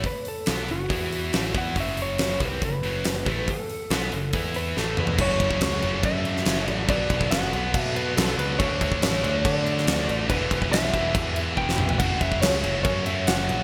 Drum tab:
CC |----------------|----------------|----------------|x-x-x-x-x-x-x-x-|
HH |o-o-o-o-o-o-o-o-|o-o-o-o-o-o-o-o-|o-o-o-o-o-o-----|----------------|
SD |----o-------o---|----o-------o---|----o-------o---|----o------oo---|
T2 |----------------|----------------|--------------o-|----------------|
FT |----------------|----------------|---------------o|----------------|
BD |o-------o-----o-|o-----o-o-----o-|o-------o-------|o-oo----o-------|

CC |x-x-x-x-x-x-x-x-|x-x-x-x-x-x-x-x-|x-x-x-x-x-x-----|x-x-x-x-x-x-x-x-|
HH |----------------|----------------|----------------|----------------|
SD |----o-------o---|----o------oo---|----o--------o--|----o-------o---|
T2 |----------------|----------------|--------------o-|----------------|
FT |----------------|----------------|---------------o|----------------|
BD |o-oo----o-------|o-oo----o-------|o-oo--o-o---o---|o-oo----o-------|